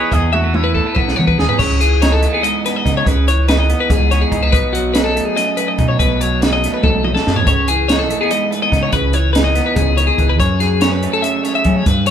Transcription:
Already playing: clean electric guitar E2 E3 B3 D#4 G#4 C#5, trumpet B4
0.12 fingered electric bass E2, clean electric guitar E2 B3 D#5, trumpet G#4, kick, closed hi-hat
0.33 clean electric guitar A3 E5, trumpet F#4, high tom
0.44 clean electric guitar B3
0.53 clean electric guitar E3 C#5, trumpet E4, high tom
0.64 clean electric guitar B4
0.74 clean electric guitar A3 A4, kick
0.86 clean electric guitar B3
0.95 fingered electric bass B1, clean electric guitar B3 B4, kick
1.08 snare
1.16 fingered electric bass E3, clean electric guitar B3 C#5, mid tom
1.27 clean electric guitar B4, kick
1.38 fingered electric bass D#2, clean electric guitar G#4, snare
1.49 clean electric guitar B4, floor tom
1.59 fingered electric bass C#2, clean electric guitar C#3 C#5, kick, crash
1.81 clean electric guitar E3 G#4, closed hi-hat
2.02 clean electric guitar D#4 C#5, snare, closed hi-hat
2.12 clean electric guitar A4
2.23 clean electric guitar A3, closed hi-hat
2.33 clean electric guitar B3 G#4
2.43 clean electric guitar G#2 D#5, closed hi-hat
2.66 clean electric guitar B3 B4, snare, closed hi-hat
2.76 clean electric guitar D#5
2.85 fingered electric bass C#3, clean electric guitar D#4, kick, snare, closed hi-hat
2.97 clean electric guitar C#5
3.06 fingered electric bass C#2, clean electric guitar C#3 B4, kick, closed hi-hat
3.27 clean electric guitar E3 C#5, closed hi-hat
3.49 clean electric guitar D#4 B4, snare, closed hi-hat
3.59 clean electric guitar D#5
3.70 clean electric guitar B3, closed hi-hat
3.80 clean electric guitar B4
3.89 fingered electric bass C#2, clean electric guitar G#2 G#4, kick, snare, closed hi-hat
4.11 clean electric guitar B3 C#5, snare, closed hi-hat
4.21 clean electric guitar G#4
4.31 fingered electric bass C#2, clean electric guitar D#4, kick, closed hi-hat
4.43 clean electric guitar B4
4.52 fingered electric bass B1, clean electric guitar B2 B4, kick, closed hi-hat
4.73 clean electric guitar F#3 F#4, closed hi-hat
4.94 clean electric guitar D#4 B4, snare, closed hi-hat
5.04 clean electric guitar A4
5.16 clean electric guitar A3, closed hi-hat
5.25 clean electric guitar G#4
5.36 clean electric guitar F#2 D#5, snare, closed hi-hat
5.57 clean electric guitar A3 B4, closed hi-hat
5.68 clean electric guitar D#5
5.78 fingered electric bass B2, clean electric guitar D#4, kick, closed hi-hat
5.88 clean electric guitar C#5
5.99 fingered electric bass B1, clean electric guitar B2 B4, kick, closed hi-hat
6.21 clean electric guitar F#3 C#5, closed hi-hat
6.41 clean electric guitar D#4 B4, snare, closed hi-hat
6.53 clean electric guitar D#5
6.64 clean electric guitar A3, snare, closed hi-hat
6.74 clean electric guitar B4
6.83 fingered electric bass B1, clean electric guitar G#2 A4, kick, high tom
7.04 clean electric guitar A2 D#5, mid tom
7.14 clean electric guitar A4, snare
7.27 fingered electric bass F#2, clean electric guitar B2, snare
7.36 clean electric guitar C#5, floor tom
7.47 fingered electric bass C#2, clean electric guitar C#3 C#5, kick, closed hi-hat
7.68 clean electric guitar E3 G#4, closed hi-hat
7.88 clean electric guitar D#4 C#5, snare, closed hi-hat
7.99 clean electric guitar A4
8.10 clean electric guitar A3, closed hi-hat
8.21 clean electric guitar B3 G#4
8.31 clean electric guitar G#2 D#5, closed hi-hat
8.51 clean electric guitar A3 B4, closed hi-hat
8.62 clean electric guitar B3 D#5
8.72 fingered electric bass C#3, clean electric guitar D#4, kick, snare, closed hi-hat
8.83 clean electric guitar C#5
8.92 fingered electric bass C#2, clean electric guitar C#3 B4, kick, closed hi-hat
9.13 clean electric guitar E3 C#5, closed hi-hat
9.33 clean electric guitar D#4 B4, snare, closed hi-hat
9.44 clean electric guitar D#5
9.55 clean electric guitar B3, snare, closed hi-hat
9.66 clean electric guitar B4
9.76 fingered electric bass C#2, clean electric guitar C#3 G#4, kick, closed hi-hat
9.97 clean electric guitar D#3 C#5, closed hi-hat
10.07 clean electric guitar G#4
10.18 fingered electric bass C#2, clean electric guitar E3, kick, closed hi-hat
10.29 clean electric guitar B4
10.38 clean electric guitar F#2 C#5, fingered electric bass F#2, kick, closed hi-hat
10.60 clean electric guitar F#3 G#4, snare, closed hi-hat
10.81 clean electric guitar C#4 C#5, snare, closed hi-hat
10.92 clean electric guitar B4
11.03 clean electric guitar A3, closed hi-hat
11.13 clean electric guitar A4
11.22 clean electric guitar C#3 E5, closed hi-hat
11.44 clean electric guitar A3 C#5, snare, closed hi-hat
11.55 clean electric guitar E5
11.64 fingered electric bass F#3, clean electric guitar C#4, kick, closed hi-hat
11.76 clean electric guitar C#5
11.86 fingered electric bass G2, clean electric guitar G2 B4, kick, closed hi-hat
12.06 clean electric guitar C#5, closed hi-hat

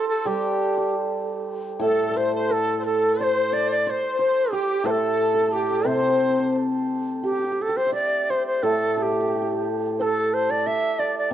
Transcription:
Already playing: hammered dulcimer E4 G4 A4 C5
0.09 xiao A4, dizi A4
0.25 hammered dulcimer G3 G4, dizi G4, xiao G4
0.78 hammered dulcimer G4
1.79 hammered dulcimer A2 A4, dizi A4
1.84 xiao A4
2.10 hammered dulcimer D5
2.16 hammered dulcimer C5, dizi C5, xiao C5
2.35 dizi C5, xiao C5
2.50 hammered dulcimer A4, dizi A4, xiao A4
2.78 dizi C5
2.84 dizi A4, xiao A4
3.19 dizi C5, hammered dulcimer C5, xiao D5
3.24 xiao C5
3.53 hammered dulcimer D5, xiao D5
3.71 xiao D5
3.79 dizi D5
3.85 hammered dulcimer C5, dizi C5, xiao D5
3.90 xiao C5
4.19 hammered dulcimer C5, xiao C5
4.52 xiao G4, hammered dulcimer G4, dizi G4
4.84 hammered dulcimer A2 A4, dizi A4, xiao C5
4.91 xiao A4
5.34 hammered dulcimer A4
5.42 hammered dulcimer A4
5.48 dizi G4, hammered dulcimer A4
5.53 xiao G4, hammered dulcimer A4
5.63 hammered dulcimer A4
5.71 hammered dulcimer A4
5.80 dizi D5
5.85 hammered dulcimer C3 C5, xiao C5, dizi C5
5.94 hammered dulcimer C5
6.02 hammered dulcimer C5
6.08 hammered dulcimer C5
6.16 hammered dulcimer C5
6.23 hammered dulcimer C5
6.30 hammered dulcimer C5
6.39 hammered dulcimer C5
7.23 hammered dulcimer G4, xiao G4
7.32 hammered dulcimer G4
7.39 hammered dulcimer G4
7.44 hammered dulcimer G4
7.52 hammered dulcimer G4
7.61 hammered dulcimer G4, xiao A4
7.69 hammered dulcimer G4
7.77 hammered dulcimer G4, xiao C5
7.87 hammered dulcimer E5
7.92 hammered dulcimer D5, xiao D5
8.30 hammered dulcimer C5, xiao C5
8.47 xiao C5
8.63 hammered dulcimer A2 A4, xiao A4
8.97 hammered dulcimer G4, xiao A4
9.02 xiao G4, hammered dulcimer G4
9.12 hammered dulcimer G4
9.20 hammered dulcimer G4
9.27 hammered dulcimer G4
9.35 hammered dulcimer G4
9.42 hammered dulcimer G4
9.52 hammered dulcimer G4
9.99 hammered dulcimer A4, xiao A4 C5
10.34 xiao C5
10.50 hammered dulcimer D5, xiao D5
10.67 hammered dulcimer E5, xiao E5
10.99 hammered dulcimer D5, xiao D5
11.18 xiao D5
11.31 hammered dulcimer C3

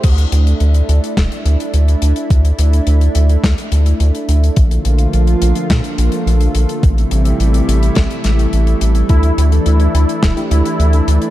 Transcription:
0.03 analog synth bass D2, analog synth pad A3 D4 E4, kick, closed hi-hat, crash
0.18 closed hi-hat
0.32 analog synth bass D2, closed hi-hat
0.47 closed hi-hat
0.60 analog synth bass D2, closed hi-hat
0.74 closed hi-hat
0.89 analog synth bass D2, closed hi-hat
1.04 closed hi-hat
1.17 analog synth bass D1, kick, snare, closed hi-hat
1.32 closed hi-hat
1.45 analog synth bass D2, closed hi-hat
1.60 closed hi-hat
1.74 analog synth bass D2, closed hi-hat
1.88 closed hi-hat
2.02 analog synth bass D2, closed hi-hat
2.16 closed hi-hat
2.30 analog synth bass D2, kick, closed hi-hat
2.45 closed hi-hat
2.59 analog synth bass D2, closed hi-hat
2.73 closed hi-hat
2.87 analog synth bass D2, closed hi-hat
3.01 closed hi-hat
3.15 analog synth bass D2, closed hi-hat
3.29 closed hi-hat
3.44 analog synth bass D2, kick, snare, closed hi-hat
3.58 closed hi-hat
3.72 analog synth bass D2, closed hi-hat
3.86 closed hi-hat
4.00 analog synth bass D2, closed hi-hat
4.15 closed hi-hat
4.28 analog synth bass D2, closed hi-hat
4.44 closed hi-hat
4.56 analog synth bass A#1, analog synth pad D3 F3 A#3 F4, kick, closed hi-hat
4.71 closed hi-hat
4.85 analog synth bass A#1, closed hi-hat
4.99 closed hi-hat
5.13 analog synth bass A#1, closed hi-hat
5.27 closed hi-hat
5.42 analog synth bass A#1, closed hi-hat
5.55 closed hi-hat
5.70 analog synth bass A#2, kick, snare, closed hi-hat
5.84 closed hi-hat
5.98 analog synth bass A#1, closed hi-hat
6.12 closed hi-hat
6.26 analog synth bass A#1, closed hi-hat
6.41 closed hi-hat
6.55 analog synth bass A#1, closed hi-hat
6.69 closed hi-hat
6.83 analog synth bass A1, analog synth pad C3 E3 G3 E4, kick, closed hi-hat
6.98 closed hi-hat
7.11 analog synth bass A1, closed hi-hat
7.25 closed hi-hat
7.40 analog synth bass A1, closed hi-hat
7.54 closed hi-hat
7.68 analog synth bass A1, closed hi-hat
7.83 closed hi-hat
7.95 analog synth bass A1, kick, snare, closed hi-hat
8.11 closed hi-hat
8.24 analog synth bass A1, snare, closed hi-hat
8.39 closed hi-hat
8.53 analog synth bass A1, closed hi-hat
8.67 closed hi-hat
8.81 analog synth bass A1, closed hi-hat
8.95 closed hi-hat
9.09 analog synth bass D2, fm electric piano A3 D4 E4 A4, analog synth pad D4, analog synth lead E4, kick, closed hi-hat
9.23 closed hi-hat
9.38 analog synth bass D2, closed hi-hat
9.52 fm electric piano A3 D4 E4 A4, closed hi-hat
9.66 analog synth bass D2, analog synth lead E4, closed hi-hat
9.80 closed hi-hat
9.94 analog synth bass D2, fm electric piano A3 D4 E4 A4, closed hi-hat
10.09 closed hi-hat
10.23 analog synth bass D1, kick, snare, closed hi-hat
10.37 fm electric piano A3 D4 E4 G4, closed hi-hat
10.51 analog synth bass D2, analog synth lead E4, closed hi-hat
10.65 closed hi-hat
10.79 analog synth bass D2, closed hi-hat
10.93 fm electric piano A3 D4 E4 A4, closed hi-hat
11.08 analog synth bass D2, closed hi-hat
11.22 closed hi-hat

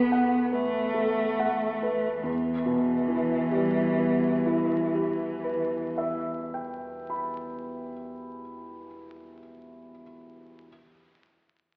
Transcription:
Already playing: grand piano E2 A4 B4 F#5, cello B3
0.12 grand piano F#5
0.51 cello A3, grand piano B4
0.94 grand piano A4
1.39 grand piano F#5
1.83 grand piano B4
2.23 grand piano E2, cello E3
2.66 grand piano B2
3.08 grand piano E3
3.52 grand piano G3
3.98 grand piano B3
4.46 grand piano E4
4.94 grand piano G4
5.44 grand piano B4
5.98 grand piano E5
6.54 grand piano G5
7.10 grand piano B5

